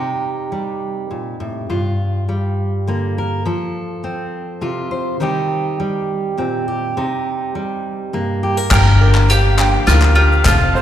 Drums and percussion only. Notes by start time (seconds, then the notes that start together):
8.71 kick, clap, crash, shaker
9.15 clap
9.30 closed hi-hat, shaker
9.59 clap
9.87 snare, closed hi-hat, shaker
10.02 clap
10.32 shaker
10.45 kick, clap, closed hi-hat, shaker
10.76 shaker